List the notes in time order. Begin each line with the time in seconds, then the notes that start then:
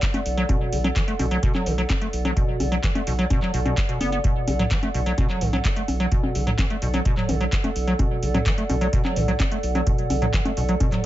Already playing: A4 D5 F#5
0.02 kick, clap, closed hi-hat
0.14 A3, closed hi-hat, high conga
0.26 B1, open hi-hat
0.37 F#3, closed hi-hat
0.49 B2, kick, closed hi-hat, high conga
0.73 B1 D3, open hi-hat
0.84 F#3, closed hi-hat, high conga
0.96 E3, kick, clap, closed hi-hat
1.08 A3, closed hi-hat
1.19 B1 B2, open hi-hat, high conga
1.31 F#3, closed hi-hat
1.43 B2, kick, closed hi-hat
1.55 F#3, clap, high conga
1.66 B1 D3, open hi-hat
1.78 F#3, closed hi-hat
1.90 kick, clap, closed hi-hat, high conga
2.02 A3, closed hi-hat
2.13 B1, open hi-hat
2.25 F#3, closed hi-hat, high conga
2.37 B2, kick, closed hi-hat
2.60 B1 D3, open hi-hat, high conga
2.72 F#3, closed hi-hat
2.83 E3, kick, clap, closed hi-hat
2.95 A3, closed hi-hat, high conga
3.07 B1 B2, open hi-hat
3.19 F#3, closed hi-hat
3.30 B2, kick, closed hi-hat, high conga
3.42 F#3, clap
3.54 B1 B2, open hi-hat
3.65 B2, closed hi-hat, high conga
3.77 kick, clap, closed hi-hat
3.89 B2, closed hi-hat
4.01 F#1 B3, open hi-hat, high conga
4.12 B3, closed hi-hat
4.24 B2, kick, closed hi-hat
4.48 B1 D3, open hi-hat, high conga
4.59 F#3, closed hi-hat, mid tom
4.71 E3, kick, clap, closed hi-hat
4.83 A3, closed hi-hat, high conga
4.94 B1 B2, open hi-hat
5.06 F#3, closed hi-hat
5.18 B2, kick, closed hi-hat, high conga
5.30 F#3, clap
5.41 B1 D3, mid tom, open hi-hat
5.53 F#3, closed hi-hat, high conga
5.65 kick, clap, closed hi-hat
5.76 A3, closed hi-hat
5.88 B1, open hi-hat, high conga
6.00 F#3, closed hi-hat
6.12 B2, kick, closed hi-hat
6.23 high conga
6.35 B1 D3, open hi-hat
6.47 F#3, closed hi-hat, mid tom
6.59 E3, kick, clap, closed hi-hat, high conga
6.70 A3, closed hi-hat
6.82 B1 B2, open hi-hat
6.94 F#3, closed hi-hat, high conga
7.05 B2, kick, closed hi-hat
7.17 F#3, clap, mid tom
7.29 B1 D3, open hi-hat, high conga
7.41 F#3, closed hi-hat
7.52 kick, clap, closed hi-hat
7.64 A3, closed hi-hat, high conga
7.76 B1, open hi-hat
7.87 F#3, closed hi-hat
7.99 B2, kick, closed hi-hat, high conga
8.23 B1 D3, open hi-hat
8.34 F#3, closed hi-hat, mid tom, high conga
8.46 E3, kick, clap, closed hi-hat
8.58 A3, closed hi-hat
8.69 B1 B2, open hi-hat, high conga
8.81 F#3, closed hi-hat
8.93 B2, kick, closed hi-hat
9.05 F#3, clap, high conga
9.16 B1 D3, mid tom, open hi-hat
9.28 F#3, closed hi-hat
9.40 kick, clap, closed hi-hat, high conga
9.52 A3, closed hi-hat
9.63 B1, open hi-hat
9.75 F#3, closed hi-hat, high conga
9.87 B2, kick, closed hi-hat
9.98 closed hi-hat
10.10 B1 D3, open hi-hat, high conga
10.22 F#3, closed hi-hat, mid tom
10.34 E3, kick, clap, closed hi-hat
10.45 A3, closed hi-hat, high conga
10.57 B1 B2, open hi-hat
10.69 F#3, closed hi-hat
10.80 B2, kick, closed hi-hat, high conga
10.92 F#3, clap, closed hi-hat, mid tom